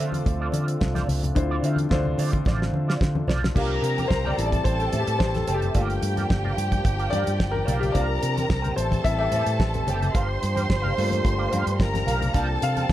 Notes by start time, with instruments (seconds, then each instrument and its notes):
Already playing: grand piano D3 D4 F4 A4 C5, french horn section D3 F3 A3 C4 F4
0.00 fingered electric bass D3, clean electric guitar F4 C5 E5
0.12 muted clean electric guitar stroke, closed hi-hat, high conga
0.25 fingered electric bass D2, muted clean electric guitar stroke, kick, closed hi-hat, muted conga
0.40 clean electric guitar F4 C5 D5
0.52 fingered electric bass D3, clean electric guitar F4 C5 D5, closed hi-hat, muted conga, high conga
0.67 muted clean electric guitar stroke, closed hi-hat
0.80 fingered electric bass C2, muted clean electric guitar stroke, kick, snare, muted conga
0.94 clean electric guitar F4 C5 D5, snare, closed hi-hat, high conga
1.07 fingered electric bass C#2, muted clean electric guitar stroke, open hi-hat, muted conga, low conga
1.22 muted clean electric guitar stroke, closed hi-hat, low conga
1.35 fingered electric bass D2, grand piano D3 D4 E4 C5, muted clean electric guitar stroke, kick, closed hi-hat, muted conga
1.42 grand piano F4
1.50 clean electric guitar F4 C5 D5
1.63 fingered electric bass D3, clean electric guitar F4 C5 E5, closed hi-hat, muted conga
1.76 muted clean electric guitar stroke, closed hi-hat, high conga
1.89 fingered electric bass D2, grand piano D3 D4 F4 C5, kick, snare, muted conga
2.05 low conga
2.18 fingered electric bass D3, clean electric guitar F4 C5 D5, open hi-hat, muted conga
2.32 muted clean electric guitar stroke, kick, closed hi-hat, high conga
2.45 fingered electric bass A1, clean electric guitar F4 C5 D5, kick, snare, muted conga
2.61 muted clean electric guitar stroke, snare
2.73 fingered electric bass D3, muted clean electric guitar stroke, muted conga, high conga
2.87 clean electric guitar F4 C5 D5, snare
3.00 fingered electric bass D3, muted clean electric guitar stroke, kick, snare
3.15 muted clean electric guitar stroke, high conga
3.28 fingered electric bass B1, clean electric guitar F4 C5 D5, snare, muted conga, low conga
3.43 muted clean electric guitar stroke, snare, low conga
3.54 fingered electric bass C2, french horn section F3 G3 A#3 C4 G4, grand piano A#3 D4 F4 G4, clean electric guitar G4 A#4 F5, violin section A#4 A#5, kick, crash, muted conga
3.71 muted clean electric guitar stroke
3.82 fingered electric bass C3, grand piano A#4, muted clean electric guitar stroke, closed hi-hat, muted conga
3.98 clean electric guitar G4 A#4 G5, closed hi-hat, high conga
4.08 fingered electric bass C2, grand piano C5, muted clean electric guitar stroke, kick, snare
4.25 clean electric guitar G4 A#4 G5, grand piano D5, low conga
4.37 fingered electric bass A1, french horn section E3 A3, grand piano G3 C4 E4, violin section A4 A5, closed hi-hat
4.46 grand piano D5
4.52 kick, closed hi-hat, high conga
4.64 fingered electric bass A1, grand piano C5, muted clean electric guitar stroke, kick, closed hi-hat
4.80 clean electric guitar G4 C5 G5, grand piano A4, closed hi-hat
4.92 fingered electric bass A2, clean electric guitar G4 C5 E5, closed hi-hat, muted conga, high conga
5.00 grand piano G4
5.07 fingered electric bass A2, muted clean electric guitar stroke, closed hi-hat
5.19 fingered electric bass A1, grand piano C5, muted clean electric guitar stroke, kick, snare, muted conga
5.34 grand piano A4, muted clean electric guitar stroke, snare, closed hi-hat, high conga
5.47 fingered electric bass F#1, clean electric guitar G4 C5 G5, closed hi-hat, muted conga, low conga
5.54 grand piano G4
5.62 clean electric guitar G4 C5 E5, closed hi-hat, low conga
5.74 fingered electric bass G1, french horn section A#2 F3 G3 D4 G4, grand piano A3 A#3 F4, violin section G4 G5, clean electric guitar A#4 D5 F5, kick, closed hi-hat, muted conga
5.88 muted clean electric guitar stroke, closed hi-hat
6.01 fingered electric bass G2, muted clean electric guitar stroke, closed hi-hat, muted conga
6.16 clean electric guitar A#4 D5 G5, closed hi-hat, high conga
6.29 fingered electric bass G1, muted clean electric guitar stroke, kick, snare, muted conga
6.44 clean electric guitar A#4 D5 F5, low conga
6.56 fingered electric bass G2, muted clean electric guitar stroke, closed hi-hat, muted conga
6.71 muted clean electric guitar stroke, kick, closed hi-hat, high conga
6.84 fingered electric bass G1, muted clean electric guitar stroke, kick, closed hi-hat
6.98 clean electric guitar A#4 D5 F5, closed hi-hat
7.10 fingered electric bass G2, clean electric guitar A#4 D5 F5, grand piano D5, closed hi-hat, muted conga, high conga
7.25 fingered electric bass G2, muted clean electric guitar stroke, closed hi-hat
7.37 fingered electric bass G1, muted clean electric guitar stroke, kick, snare, muted conga
7.51 grand piano A#4, muted clean electric guitar stroke
7.56 high conga
7.65 fingered electric bass B1, clean electric guitar A#4 D5 F5, closed hi-hat, low conga
7.79 grand piano G4, clean electric guitar A#4 D5 F5, closed hi-hat, low conga
7.92 fingered electric bass C2, french horn section F3 A#3 C4 G4, grand piano A#3 D4 F4 D5, clean electric guitar A#4 C5 F5, violin section A#4 A#5, kick, closed hi-hat
8.09 muted clean electric guitar stroke
8.21 fingered electric bass C3, muted clean electric guitar stroke, closed hi-hat, muted conga
8.36 clean electric guitar A#4 C5 G5, closed hi-hat, high conga
8.48 fingered electric bass C2, muted clean electric guitar stroke, kick, snare
8.62 clean electric guitar A#4 C5 G5, closed hi-hat
8.66 low conga
8.75 fingered electric bass A1, french horn section E3 A3, violin section A4 A5, grand piano C5, muted clean electric guitar stroke, closed hi-hat, muted conga
8.91 muted clean electric guitar stroke, kick, closed hi-hat, high conga
9.03 fingered electric bass A1, grand piano G3 C4 E4 E5, muted clean electric guitar stroke, kick, closed hi-hat, muted conga
9.18 clean electric guitar G4 C5 G5, grand piano E5
9.32 fingered electric bass A2, clean electric guitar G4 C5 E5, closed hi-hat, high conga
9.46 fingered electric bass A2, muted clean electric guitar stroke, closed hi-hat
9.59 fingered electric bass A1, muted clean electric guitar stroke, kick, snare, muted conga
9.74 muted clean electric guitar stroke, closed hi-hat, high conga
9.87 fingered electric bass F#1, clean electric guitar G4 C5 G5, closed hi-hat, muted conga, low conga
10.02 clean electric guitar G4 C5 E5, closed hi-hat, low conga
10.13 fingered electric bass G1, french horn section A#2 F3 G3 D4, clean electric guitar G4 A#4 F5, violin section C5 C6, kick, closed hi-hat
10.29 muted clean electric guitar stroke
10.40 fingered electric bass G2, muted clean electric guitar stroke, closed hi-hat, muted conga
10.55 clean electric guitar G4 A#4 G5, closed hi-hat, high conga
10.68 fingered electric bass G1, muted clean electric guitar stroke, kick, snare, muted conga
10.82 clean electric guitar G4 A#4 F5, low conga
10.94 fingered electric bass G2, grand piano A3 A#3, muted clean electric guitar stroke, open hi-hat, muted conga
10.99 grand piano F4
11.10 muted clean electric guitar stroke, closed hi-hat, high conga
11.24 fingered electric bass G1, muted clean electric guitar stroke, kick, closed hi-hat, muted conga
11.38 clean electric guitar G4 A#4 F5
11.50 fingered electric bass G2, clean electric guitar G4 A#4 F5, closed hi-hat, muted conga, high conga
11.66 fingered electric bass G2, muted clean electric guitar stroke, closed hi-hat
11.79 fingered electric bass G1, violin section A#4 A#5, muted clean electric guitar stroke, kick, snare
11.93 muted clean electric guitar stroke, snare, closed hi-hat, high conga
12.06 fingered electric bass B1, clean electric guitar G4 A#4 F5, closed hi-hat, muted conga, low conga
12.20 clean electric guitar G4 A#4 F5, closed hi-hat, low conga
12.33 fingered electric bass C2, grand piano A#3 D4 F4, french horn section C4, violin section A4 A5, clean electric guitar A#4 C5 F5, kick, closed hi-hat
12.48 muted clean electric guitar stroke
12.62 fingered electric bass C3, grand piano F5, muted clean electric guitar stroke, closed hi-hat, muted conga
12.76 clean electric guitar A#4 C5 G5, closed hi-hat, high conga
12.89 fingered electric bass C2, muted clean electric guitar stroke